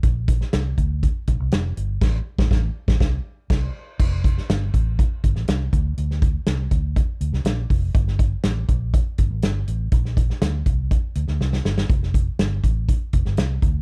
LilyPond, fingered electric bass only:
\new Staff \with { instrumentName = "Fingered electric bass" } { \clef bass \time 4/4 \key f \major \tempo 4 = 122 bes,,4 c,8 d,8. r16 bes,,16 c,16 f,,8 g,,8 | a,,8 r16 a,,16 a,,8 r16 a,,16 c,8 r8 c,8 r8 | f,,4 g,,8 a,,8. r16 g,,16 a,,16 c,8 d,8 | d,4 c,8 d,8. r16 d,16 c,16 bes,,8 f,,8 |
g,,4 a,,8 bes,,8. r16 g,,16 a,,16 g,,8 a,,8 | bes,,4 d,8 c,8. r16 d,16 d,16 c,8 g,,8 | f,,4 g,,8 a,,8. r16 f,,16 g,,16 c,8 d,8 | }